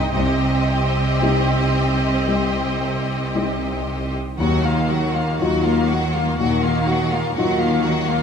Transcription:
Already playing: double bass section C2, grand piano G2 G3 D#4 G4, cello section C3, viola section D#4, violin section G4 D#5
0.14 double bass section C2, grand piano C2, cello section C3, viola section C4, violin section G4 D#5
1.22 grand piano G3 D#4 G4
2.28 grand piano G3
3.35 grand piano G3 D#4 G4
4.38 double bass section D#2, grand piano D#2, cello section D#3, viola section F#3, violin section F#4 F#5
4.63 viola section A#3, violin section F4 F5
4.89 viola section F#3, violin section F#4 F#5
5.13 viola section A#3, violin section F4 F5
5.37 double bass section D#2, cello section D#3, viola section F#3, grand piano F#3 D#4, violin section F#4 F#5
5.41 grand piano F4
5.62 viola section A#3, violin section F4 F5
5.88 viola section F#3, violin section F#4 F#5
6.13 viola section A#3, violin section F4 F5
6.37 double bass section D#2, grand piano A#2, cello section D#3, viola section F#3, violin section F#4 F#5
6.62 viola section A#3, violin section F4 F5
6.85 viola section F#3, violin section F#4 F#5
7.11 viola section A#3, violin section F4 F5
7.34 double bass section D#2, cello section D#3, viola section F#3, grand piano F#3 D#4 F4, violin section F#4 F#5
7.59 viola section A#3, violin section F4 F5
7.83 viola section F#3, violin section F#4 F#5
8.08 viola section A#3, violin section F4 F5

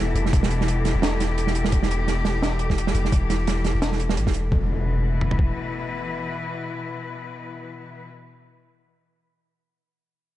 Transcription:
Already playing: 808-style bass E1, cello section B2 E3 E4 G4, synth texture A4
0.15 808-style bass F1, closed hi-hat
0.26 snare
0.33 808-style bass E1, kick, closed hi-hat
0.43 snare
0.51 closed hi-hat
0.61 snare
0.68 closed hi-hat
0.85 snare, closed hi-hat
0.95 808-style bass E1
1.02 snare, closed hi-hat
1.20 snare, closed hi-hat
1.38 closed hi-hat
1.47 snare
1.55 closed hi-hat
1.65 snare
1.72 808-style bass E1, kick, closed hi-hat
1.83 snare
1.91 closed hi-hat
2.08 snare, closed hi-hat
2.25 snare, closed hi-hat
2.42 snare, closed hi-hat
2.59 closed hi-hat
2.70 kick, snare
2.78 closed hi-hat
2.87 snare
2.95 808-style bass F1, closed hi-hat
3.05 snare
3.12 808-style bass E1, kick, closed hi-hat
3.30 snare, closed hi-hat
3.47 snare, closed hi-hat
3.64 snare, closed hi-hat
3.75 808-style bass E1
3.82 snare, closed hi-hat
3.92 snare
4.00 closed hi-hat
4.09 snare
4.17 808-style bass A1, closed hi-hat
4.27 808-style bass E1, kick, snare
4.34 closed hi-hat
4.52 808-style bass E1, cello section B2, kick, impact
4.59 cello section E3
4.64 cello section E4
4.70 cello section B4
5.21 mid tom
5.31 floor tom
5.39 kick

